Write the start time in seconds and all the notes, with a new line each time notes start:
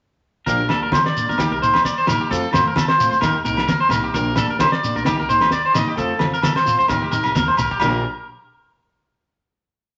0.46 A#1 F3 A#3 D4 G4 A#4, kick, snare, muted conga, shekere
0.69 D2 A#3 D4 G4 A4, snare, muted conga, low agogo
0.83 A#4
0.92 C5, kick, snare, high conga, low agogo, shekere
1.06 D5, snare
1.14 A#3 D4 G4, shekere
1.29 G1 A#4, shekere
1.37 D#2 D#3 A#3 D#4 G4, kick, snare, muted conga, high conga, low agogo, shekere
1.51 C2 A#4
1.61 A#3 D#4 C5, shekere
1.74 D#2, snare, low agogo, shekere
1.84 D5, kick, snare, shekere
1.98 C5
2.06 A#3 D#4 G4 A#4, snare, muted conga, high conga, low agogo, shekere
2.21 G4
2.29 F2 F3 A3 C4 F4 A4, kick, muted conga, shekere
2.52 F2 A3 C4 F4 C5, snare, muted conga, high conga, low agogo, shekere
2.67 A#4
2.76 A4, kick, snare, high conga, low agogo, shekere
2.88 C5, snare
2.98 A3 C4 F4, shekere
3.11 F3 C5, shekere
3.20 D#2 D#3 A#3 D#4 G4 A#4, kick, snare, muted conga, low conga, low agogo, shekere
3.35 D#2, muted clean electric guitar stroke
3.44 C2 A#3 D#4 G4 A#4, shekere
3.57 snare, low agogo
3.67 D#2 A#4, kick, snare, high conga, shekere
3.80 C5
3.89 C2 D#4 G4 A#4, snare, muted conga, low agogo, shekere
3.93 A#3
4.04 G4
4.14 A#1 F3 A#3 D4 G4 A#4, kick, muted conga, shekere
4.35 D2 A#3 D4 G4 A4, snare, muted conga, low agogo, shekere
4.50 A#4
4.59 C5, kick, snare, high conga, low agogo, shekere
4.72 D5, snare
4.83 A#3 D4 G4, shekere
4.96 A#1 A#4, shekere
5.05 D#2 D#3 A#3 D#4 G4, muted steel-string acoustic guitar stroke, kick, snare, muted conga, high conga, low agogo, shekere
5.18 C2 A#4, snare
5.28 A#3 D#4 G4 C5, shekere
5.41 D#2, snare, low agogo, shekere
5.51 D5, kick, snare, shekere
5.66 C5
5.73 A#3 D#4 G4 D#5, snare, muted conga, high conga, low agogo, shekere
5.88 G4
5.96 F2 A3 C4 F4 A4, kick, muted conga, shekere
6.19 F2 C4 F4, snare, muted conga, high conga, low agogo
6.34 A#4, shekere
6.43 A4, kick, snare, high conga, low agogo, shekere
6.56 C5, snare
6.66 C4 F4, shekere
6.79 F2 C5, shekere
6.87 D#2 A#3 D#4 G4 A#4, kick, snare, muted conga, low conga, low agogo, shekere
7.02 D#2 G4, high tom
7.10 C2 D#4 G4 A#4, mid tom, shekere
7.24 mid tom, low agogo, shekere
7.35 D#2 A#4, kick, snare, high conga, shekere
7.48 C5, mid tom
7.55 C2 G4 A#4, muted conga, low agogo, shekere
7.59 floor tom
7.71 G4, kick
7.79 A#1 F3 A#3 D4 G4 A#4, kick, crash, muted conga, low agogo, shekere